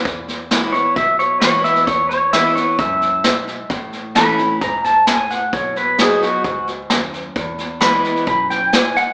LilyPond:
<<
  \new Staff \with { instrumentName = "Pedal steel guitar" } { \time 4/4 \key e \major \tempo 4 = 131 r4. cis''8 e''8 cis''8 cis''8 e''8 | cis''8 cis''8 e''8 cis''8 e''2 | r4 b''4 ais''8 a''8 gis''8 fis''8 | cis''8 b'8 gis'8 fis'8 fis'8 r4. |
r4 b''4 b''8 g''8 gis''8 fis''8 | }
  \new Staff \with { instrumentName = "Steel-string acoustic guitar" } { \clef bass \time 4/4 \key e \major << { r4 <e gis b e'>8 <b e'>8 r4 <e gis b e'>4 | r4 <e gis b e'>8 <b e'>8 r2 | r4 <e a cis' e'>8 <cis' e'>8 r2 | r4 <fis b dis' fis'>4 r2 |
r4 <e gis b e'>4 r2 | } \\ { e,2 b,2 | e,2 fis,4 gis,4 | a,2 gis,4 a,4 | b,2 gis,4 fis,4 |
e,2 fis,4 gis,4 | } >> }
  \new Staff \with { instrumentName = "Picked electric bass" } { \clef bass \time 4/4 \key e \major e,2 b,,2 | e,2 cis,4 b,,4 | a,,2 e,,2 | b,,2 cis,4 dis,4 |
e,2 b,,2 | }
  \new DrumStaff \with { instrumentName = "Drums" } \drummode { \time 4/4 <bd sn>8 sn8 <hhp sn>8 sn8 <bd sn>8 sn8 <hhp sn>8 sn16 sn16 | <bd sn>8 sn8 <hhp sn>8 sn8 <bd sn>8 sn8 <hhp sn>8 sn8 | <bd sn>8 sn8 <hhp sn>8 sn8 <bd sn>8 sn8 <hhp sn>8 sn8 | <bd sn>8 sn8 <hhp sn>8 sn8 <bd sn>8 sn8 <hhp sn>8 sn8 |
<bd sn>8 sn8 <hhp sn>8 sn16 sn16 <bd sn>8 sn8 <hhp sn>8 sn8 | }
>>